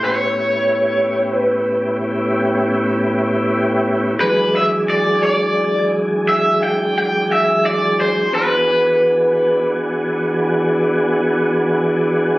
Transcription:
0.03 A2 B3 C#4 E4 G4 C#5
1.37 B4
4.19 E3 F#3 G#3 D4 G#4 B4
4.56 E5
4.90 D5
5.23 D5
6.29 E5
6.63 G5
6.98 G5
7.32 E5
7.66 D5
8.00 C5
8.31 E3 B3 D4 F#4 G#4 B4

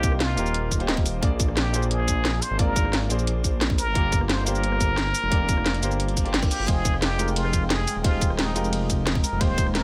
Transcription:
Already playing: C2 A#3 D#4 F4 G4 A#4 C5
0.03 kick, closed hi-hat, cabasa
0.12 cross-stick
0.20 F4, snare, closed hi-hat
0.36 D#1 A#3 D#4 F4 G4 A#4, closed hi-hat, cabasa
0.46 cabasa
0.54 D#1, closed hi-hat
0.71 kick, closed hi-hat, cabasa
0.79 A#3 D#4 F4 G4 C5, closed hi-hat
0.88 A#3 D#4 F4 G4 D#5, snare, closed hi-hat
0.97 kick
1.06 open hi-hat, cabasa
1.21 A#1 A#3 D4 F4 G#4 D5, kick, closed hi-hat
1.40 kick, closed hi-hat, cabasa
1.48 cross-stick
1.57 G4, snare, closed hi-hat
1.72 A#3 D4 F4 G#4 C5, closed hi-hat, cabasa
1.82 cabasa
1.91 G#4, closed hi-hat
2.00 cross-stick
2.08 kick, closed hi-hat, cabasa
2.25 snare, closed hi-hat
2.42 C5, open hi-hat, cabasa
2.51 G#1
2.58 A#3 D4 F4 G#4 A#4 D5, kick, closed hi-hat
2.76 kick, closed hi-hat, cabasa
2.85 cross-stick
2.93 snare, closed hi-hat
3.09 A#1 A#3 D4 F4 G#4 C5, closed hi-hat, cabasa
3.19 cabasa
3.27 closed hi-hat
3.44 kick, closed hi-hat, cabasa
3.61 snare, closed hi-hat
3.70 kick
3.78 A#4, open hi-hat, cabasa
3.87 G1
3.94 G1 A#3 D4 F4 G4 D5, kick, closed hi-hat
4.12 kick, closed hi-hat, cabasa
4.21 cross-stick
4.29 C5, snare, closed hi-hat
4.45 A#3 D4 F4 G4 A#4 C5, closed hi-hat, cabasa
4.55 cabasa
4.64 closed hi-hat
4.72 cross-stick
4.81 kick, closed hi-hat, cabasa
4.98 snare, closed hi-hat
5.15 open hi-hat, cabasa
5.23 F1
5.30 A#3 D4 F4 G4 D5, kick, closed hi-hat
5.49 kick, closed hi-hat, cabasa
5.57 cross-stick
5.66 snare, closed hi-hat
5.74 closed hi-hat
5.81 G1 A#3 D4 F4 G4 C5, closed hi-hat, cabasa
5.91 cabasa
6.00 closed hi-hat, reverse cymbal
6.08 closed hi-hat
6.17 kick, closed hi-hat, cabasa
6.25 A#3 D4 F4 G4 D5, closed hi-hat
6.33 A#3 D4 F4 G4 F5, snare, closed hi-hat
6.43 kick, cross-stick, cabasa
6.50 G4, open hi-hat, cabasa
6.60 G1
6.66 F1 G#3 D#4 F4 G#4 C5 G5 D#6, kick, closed hi-hat, ride
6.85 kick, closed hi-hat, ride, cabasa
6.94 cross-stick
7.02 G4, snare, closed hi-hat, ride
7.17 G#3 D#4 F4 A#4 G5, closed hi-hat, ride, cabasa
7.28 cabasa
7.36 F4, closed hi-hat, ride
7.45 cross-stick
7.53 kick, closed hi-hat, ride, cabasa
7.70 G#4, snare, closed hi-hat, ride
7.87 open hi-hat, ride, cabasa
7.96 D#1
8.03 G#3 D#4 F4 G4 C5, kick, closed hi-hat, ride
8.21 kick, closed hi-hat, ride, cabasa
8.30 cross-stick
8.39 D#4, snare, closed hi-hat, ride
8.54 F1 G#3 D#4 F4 G4 A#4, closed hi-hat, ride, cabasa
8.64 cabasa
8.73 closed hi-hat, ride
8.90 kick, closed hi-hat, ride, cabasa
9.07 snare, closed hi-hat, ride
9.15 kick
9.24 A#4, open hi-hat, ride, cabasa
9.32 F1
9.39 D#1 A#3 D#4 F4 G4 C5 F5, kick, closed hi-hat, ride
9.58 kick, closed hi-hat, ride, cabasa
9.67 cross-stick
9.75 A#4, snare, closed hi-hat, ride

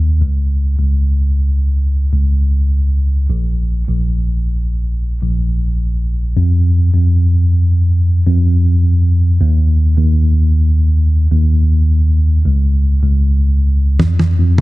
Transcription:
Already playing: D#2
0.21 C#2
0.79 C#2
2.14 C#2
3.30 A#1
3.87 A#1
5.22 A#1
6.37 F2
6.94 F2
8.27 F2
9.41 D#2
9.97 D#2
11.31 D#2
12.45 C#2
13.03 C#2
14.00 F2, high tom
14.19 high tom
14.38 F2

